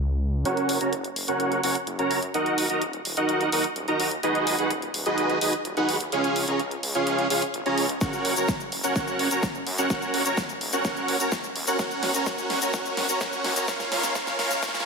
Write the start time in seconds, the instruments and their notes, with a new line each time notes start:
Already playing: detuned saw bass C#2
0.45 detuned saw bass F#1, supersaw synth C#4 F#4 A#4 C#5 F#5, closed hi-hat
0.57 closed hi-hat
0.69 detuned saw bass F#1, open hi-hat
0.81 supersaw synth C#4 F#4 A#4 C#5 A#5, closed hi-hat
0.93 detuned saw bass F#1, closed hi-hat
1.04 closed hi-hat
1.16 detuned saw bass F#1, open hi-hat
1.28 supersaw synth C#4 F#4 A#4 C#5 F#5, closed hi-hat
1.40 detuned saw bass F#1, closed hi-hat
1.52 closed hi-hat
1.63 detuned saw bass F#1, supersaw synth C#4 F#4 A#4 C#5 F#5, open hi-hat
1.75 closed hi-hat
1.87 detuned saw bass F#1, closed hi-hat
1.99 supersaw synth C#4 F#4 A#4 C#5 A#5, closed hi-hat
2.11 detuned saw bass F#2, open hi-hat
2.23 closed hi-hat
2.34 detuned saw bass D#1, supersaw synth D#4 F#4 A#4 D#5 F#5, closed hi-hat
2.46 closed hi-hat
2.58 detuned saw bass D#1, open hi-hat
2.70 supersaw synth D#4 F#4 A#4 D#5 A#5, closed hi-hat
2.82 detuned saw bass D#1, closed hi-hat
2.93 closed hi-hat
3.05 detuned saw bass D#1, open hi-hat
3.17 supersaw synth D#4 F#4 A#4 D#5 F#5, closed hi-hat
3.29 detuned saw bass D#1, closed hi-hat
3.41 closed hi-hat
3.52 detuned saw bass D#1, supersaw synth D#4 F#4 A#4 D#5 F#5, open hi-hat
3.64 closed hi-hat
3.76 detuned saw bass D#1, closed hi-hat
3.88 supersaw synth D#4 F#4 A#4 D#5 A#5, closed hi-hat
4.00 detuned saw bass D#2, open hi-hat
4.11 closed hi-hat
4.23 detuned saw bass D#1, supersaw synth D#4 F#4 G#4 B4 D#5, closed hi-hat
4.35 closed hi-hat
4.47 detuned saw bass D#1, open hi-hat
4.59 supersaw synth D#4 F#4 G#4 B4 F#5, closed hi-hat
4.70 detuned saw bass D#1, closed hi-hat
4.82 closed hi-hat
4.94 detuned saw bass D#1, open hi-hat
5.06 supersaw synth D#4 F#4 G#4 B4 D#5, closed hi-hat
5.18 detuned saw bass D#1, closed hi-hat
5.30 closed hi-hat
5.41 detuned saw bass D#1, supersaw synth D#4 F#4 G#4 B4 D#5, open hi-hat
5.53 closed hi-hat
5.65 detuned saw bass D#1, closed hi-hat
5.77 supersaw synth D#4 F#4 G#4 B4 F#5, closed hi-hat
5.89 detuned saw bass D#2, open hi-hat
6.00 closed hi-hat
6.12 detuned saw bass C#2, supersaw synth C#4 F4 G#4 C#5 F5, closed hi-hat
6.24 closed hi-hat
6.36 detuned saw bass C#2, open hi-hat
6.48 supersaw synth C#4 F4 G#4 C#5 A#5, closed hi-hat
6.60 detuned saw bass C#2, closed hi-hat
6.71 closed hi-hat
6.83 detuned saw bass C#2, open hi-hat
6.95 supersaw synth C#4 F4 G#4 C#5 F5, closed hi-hat
7.07 detuned saw bass C#2, closed hi-hat
7.19 closed hi-hat
7.30 detuned saw bass C#2, supersaw synth C#4 F4 G#4 C#5 F5, open hi-hat
7.42 closed hi-hat
7.54 detuned saw bass G#1, closed hi-hat
7.66 supersaw synth C#4 F4 G#4 C#5 A#5, closed hi-hat
7.78 detuned saw bass C#2, open hi-hat
7.89 closed hi-hat
8.01 detuned saw bass F#1, supersaw synth C#4 F#4 A#4 C#5 F#5, kick, snare, closed hi-hat, shaker
8.13 closed hi-hat, shaker
8.25 detuned saw bass F#1, open hi-hat
8.37 supersaw synth C#4 F#4 A#4 C#5 A#5, closed hi-hat, shaker
8.48 detuned saw bass F#1, kick, snare, closed hi-hat, shaker
8.60 closed hi-hat, shaker
8.72 detuned saw bass F#1, open hi-hat
8.84 supersaw synth C#4 F#4 A#4 C#5 F#5, closed hi-hat, shaker
8.96 detuned saw bass F#1, supersaw synth C#4 F#4 A#4 C#5 F#5, kick, snare, closed hi-hat, shaker
9.08 closed hi-hat, shaker
9.19 detuned saw bass F#1, open hi-hat
9.31 supersaw synth C#4 F#4 A#4 C#5 A#5, closed hi-hat, shaker
9.43 detuned saw bass F#1, kick, snare, closed hi-hat, shaker
9.55 closed hi-hat, shaker
9.67 detuned saw bass F#2, open hi-hat
9.78 supersaw synth C#4 F#4 A#4 C#5 F#5, closed hi-hat, shaker
9.90 supersaw synth C#4 F#4 A#4 C#5 F#5, kick, snare, closed hi-hat, shaker
10.02 closed hi-hat, shaker
10.14 detuned saw bass D#1, open hi-hat
10.26 supersaw synth C#4 F#4 A#4 C#5 A#5, closed hi-hat, shaker
10.37 detuned saw bass D#1, kick, snare, closed hi-hat, shaker
10.49 closed hi-hat, shaker
10.61 detuned saw bass D#1, open hi-hat
10.73 supersaw synth C#4 F#4 A#4 C#5 F#5, closed hi-hat, shaker
10.85 supersaw synth C#4 F#4 A#4 C#5 F#5, kick, snare, closed hi-hat, shaker
10.97 closed hi-hat, shaker
11.08 detuned saw bass D#1, open hi-hat
11.20 supersaw synth C#4 F#4 A#4 C#5 A#5, closed hi-hat, shaker
11.32 kick, snare, closed hi-hat, shaker
11.44 closed hi-hat, shaker
11.56 detuned saw bass D#2, open hi-hat
11.67 supersaw synth C#4 F#4 A#4 C#5 F#5, closed hi-hat, shaker
11.79 supersaw synth C#4 F#4 A#4 C#5 F#5, kick, snare, closed hi-hat, shaker
11.91 closed hi-hat, shaker
12.03 snare, open hi-hat
12.15 supersaw synth C#4 F#4 A#4 C#5 A#5, closed hi-hat, shaker
12.26 supersaw synth C#4 F#4 A#4 C#5 F#5, kick, snare, closed hi-hat, shaker
12.38 closed hi-hat, shaker
12.50 snare, open hi-hat
12.62 supersaw synth C#4 F#4 A#4 C#5 A#5, closed hi-hat, shaker
12.74 supersaw synth C#4 F#4 A#4 C#5 F#5, kick, snare, closed hi-hat, shaker
12.85 closed hi-hat, shaker
12.97 snare, open hi-hat
13.09 supersaw synth C#4 F#4 A#4 C#5 A#5, closed hi-hat, shaker
13.21 supersaw synth C#4 F#4 A#4 C#5 F#5, kick, snare, closed hi-hat, shaker
13.33 closed hi-hat, shaker
13.44 detuned saw bass D#2, snare, open hi-hat
13.56 supersaw synth C#4 F#4 A#4 C#5 A#5, closed hi-hat, shaker
13.68 detuned saw bass C#2, supersaw synth C#4 F4 A#4 C#5 F5, kick, snare, closed hi-hat, shaker
13.80 snare, closed hi-hat, shaker
13.92 detuned saw bass C#2, supersaw synth C#4 F4 A#4 C#5 F5, snare, open hi-hat
14.04 snare, closed hi-hat, shaker
14.15 detuned saw bass C#2, supersaw synth C#4 F4 A#4 C#5 F5, kick, snare, closed hi-hat, shaker
14.27 snare, closed hi-hat, shaker
14.39 detuned saw bass C#2, supersaw synth C#4 F4 A#4 C#5 F5, snare, open hi-hat
14.51 snare, closed hi-hat, shaker
14.63 detuned saw bass C#2, supersaw synth C#4 F4 A#4 C#5 F5, kick, snare, closed hi-hat, shaker
14.69 snare
14.74 snare, closed hi-hat, shaker
14.80 snare